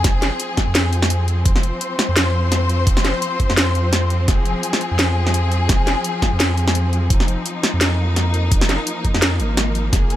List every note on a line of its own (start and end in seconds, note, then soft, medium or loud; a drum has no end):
0.00 10.16 F3 medium
0.00 7.77 C4 medium
0.00 1.45 G#4 medium
0.04 0.31 F1 loud
0.04 kick loud
0.04 snare medium
0.04 closed hi-hat medium
0.22 snare medium
0.22 closed hi-hat soft
0.40 closed hi-hat medium
0.57 kick medium
0.57 snare medium
0.57 closed hi-hat soft
0.67 1.45 F2 loud
0.75 snare loud
0.75 closed hi-hat medium
0.93 closed hi-hat soft
1.02 snare medium
1.10 closed hi-hat medium
1.28 closed hi-hat soft
1.45 1.72 F1 loud
1.45 4.27 C5 medium
1.45 kick loud
1.45 closed hi-hat medium
1.56 snare soft
1.63 closed hi-hat soft
1.81 closed hi-hat medium
1.99 snare medium
1.99 closed hi-hat soft
2.09 2.86 F2 loud
2.16 snare loud
2.16 closed hi-hat medium
2.52 snare medium
2.52 closed hi-hat medium
2.69 closed hi-hat soft
2.87 3.13 F1 loud
2.87 kick loud
2.87 closed hi-hat medium
2.97 snare medium
3.05 snare medium
3.05 closed hi-hat soft
3.22 closed hi-hat medium
3.40 kick medium
3.40 closed hi-hat soft
3.50 4.27 F2 loud
3.50 snare soft
3.57 snare loud
3.57 closed hi-hat medium
3.75 closed hi-hat soft
3.93 snare medium
3.93 closed hi-hat medium
4.10 closed hi-hat soft
4.28 4.54 F1 loud
4.28 7.10 G#4 medium
4.28 kick loud
4.28 snare soft
4.28 closed hi-hat medium
4.45 closed hi-hat soft
4.63 closed hi-hat medium
4.73 snare medium
4.81 closed hi-hat soft
4.91 5.69 F2 medium
4.99 snare loud
4.99 closed hi-hat medium
5.27 snare medium
5.34 closed hi-hat medium
5.52 closed hi-hat soft
5.69 5.96 F1 loud
5.69 kick loud
5.69 snare medium
5.69 closed hi-hat medium
5.87 snare medium
5.87 closed hi-hat soft
6.04 closed hi-hat medium
6.22 kick medium
6.22 snare medium
6.22 closed hi-hat soft
6.33 7.10 F2 loud
6.40 snare loud
6.40 closed hi-hat medium
6.58 closed hi-hat soft
6.67 snare medium
6.75 closed hi-hat medium
6.93 closed hi-hat soft
7.10 7.37 F1 loud
7.10 9.92 D#4 medium
7.10 kick loud
7.10 closed hi-hat medium
7.20 snare medium
7.28 closed hi-hat soft
7.46 closed hi-hat medium
7.63 snare medium
7.63 closed hi-hat soft
7.74 8.51 F2 medium
7.81 10.16 A#3 medium
7.81 snare loud
7.81 closed hi-hat medium
8.16 snare medium
8.16 closed hi-hat medium
8.34 closed hi-hat soft
8.52 8.78 F1 loud
8.52 kick loud
8.52 closed hi-hat medium
8.61 snare medium
8.69 snare medium
8.69 closed hi-hat soft
8.87 closed hi-hat medium
9.05 kick medium
9.05 closed hi-hat soft
9.14 9.41 F2 loud
9.14 snare medium
9.22 snare loud
9.22 closed hi-hat medium
9.40 9.92 G#1 medium
9.40 closed hi-hat soft
9.57 snare medium
9.57 closed hi-hat medium
9.75 closed hi-hat soft
9.93 10.16 F1 loud
9.93 10.16 G#4 medium
9.93 kick loud
9.93 snare medium
9.93 closed hi-hat medium
10.10 closed hi-hat soft